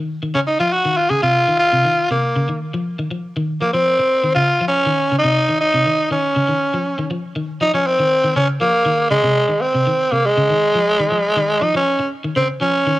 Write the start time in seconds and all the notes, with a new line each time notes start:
0.00 D#3
0.23 D#3
0.35 C#3 C#4
0.47 D#4
0.60 F3 F4
0.73 F#4
0.86 D#3
0.97 F4
1.10 C#3 G#4
1.23 C3 F4
1.48 D#3
1.59 F4
1.73 C3
1.85 D#3
2.11 C3 A#3
2.36 C#3
2.49 D#3
2.74 F3
2.99 D#3
3.11 F3
3.36 D#3
3.61 F3 A#3
3.73 F3 C4
3.99 muted clean electric guitar stroke
4.24 D#3
4.35 C#3 F4
4.61 F3
4.68 C#4
4.86 D#3
5.12 C#3
5.19 D#4
5.24 C3
5.49 D#3
5.61 D#4
5.74 C3
5.86 D#3
6.11 D#3 C#4
6.36 C#3
6.48 D#3
6.74 F3
6.99 D#3
7.11 F3
7.36 D#3
7.61 F3 D#4
7.74 F3 C#4
7.87 C4
7.99 D#3
8.24 D#3
8.36 C#3 C#4
8.61 F3 A#3
8.86 D#3
9.11 C#3 G#3
9.24 C3
9.49 D#3
9.61 C4
9.75 C3
9.87 D#3
10.12 C3 A#3
10.26 G#3
10.37 C#3
10.50 D#3
10.75 F3
11.00 D#3
11.12 F3
11.37 D#3
11.62 F3 D#4
11.75 F3 C#4
11.99 muted clean electric guitar stroke
12.24 D#3
12.36 C#3 C4
12.61 F3 C#4
12.87 D#3